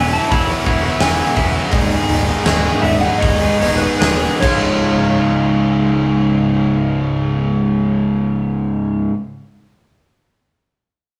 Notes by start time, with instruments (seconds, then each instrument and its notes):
Already playing: picked electric bass E1, overdriven electric guitar E2 B2 E3 F#3, clean electric guitar E2 B2 E3 G#4, string section E4 G#4 F#5 B5, electric slide guitar G#5
0.00 overdriven electric guitar B3 E4, clean electric guitar B4
0.13 overdriven electric guitar E3 F#3 B3 E4, electric slide guitar A5
0.31 picked electric bass E1, clean electric guitar E4 C#5, electric slide guitar B5, kick, open hi-hat
0.48 overdriven electric guitar E3 F#3 B3 E4
0.66 picked electric bass E1, overdriven electric guitar E3 F#3 B3 E4, clean electric guitar C#5, kick, open hi-hat
0.83 overdriven electric guitar E3 F#3 B3 E4
1.00 picked electric bass E1, overdriven electric guitar E2 B2 E3 F#3 B3, electric slide guitar G#5, snare, open hi-hat
1.04 overdriven electric guitar E4
1.17 overdriven electric guitar E3 F#3 B3 E4
1.36 picked electric bass E1, overdriven electric guitar E3 F#3 B3 E4, clean electric guitar E5, kick, open hi-hat
1.53 overdriven electric guitar E3 F#3 B3 E4
1.71 picked electric bass D#1, overdriven electric guitar G#2 D#3 G#3 B3 D#4 G#4, string section B4 D#5 B5, clean electric guitar D#5, kick, open hi-hat
2.07 picked electric bass D#1, clean electric guitar D#3, overdriven electric guitar G#3 B3 D#4 G#4, open hi-hat
2.26 overdriven electric guitar G#3 B3 D#4 G#4
2.45 picked electric bass D#1, overdriven electric guitar G#2 D#3 G#3 B3 D#4 G#4, clean electric guitar C#5, snare, open hi-hat
2.65 overdriven electric guitar G#3 B3 D#4 G#4
2.82 picked electric bass D#1, overdriven electric guitar G#3 B3 D#4, clean electric guitar B4, electric slide guitar E5, muted overdriven electric guitar stroke, open hi-hat
2.86 overdriven electric guitar G#4
3.01 overdriven electric guitar B3 D#4 G#4, electric slide guitar F#5
3.06 overdriven electric guitar G#3
3.18 clean electric guitar G#4 C#5, electric slide guitar D#5, open hi-hat
3.23 picked electric bass D#1, kick
3.41 overdriven electric guitar G#3 B3 D#4 G#4
3.60 picked electric bass D#1, overdriven electric guitar G#3 B3 D#4, clean electric guitar C#5, open hi-hat
3.64 overdriven electric guitar G#4
3.77 overdriven electric guitar G#4, electric slide guitar B4
3.82 overdriven electric guitar G#3 B3 D#4
3.99 picked electric bass D#1, overdriven electric guitar G#2 D#3 G#3 B3, clean electric guitar G#4, electric slide guitar B4, snare, open hi-hat
4.03 overdriven electric guitar D#4 G#4
4.20 overdriven electric guitar G#3 B3 D#4 G#4
4.40 picked electric bass C#1, overdriven electric guitar C#2 G#2 C#3 G#3, string section G#3 C#4 F4 C#5 F5, electric slide guitar C#5, clean electric guitar C#5, kick, crash
4.44 overdriven electric guitar F4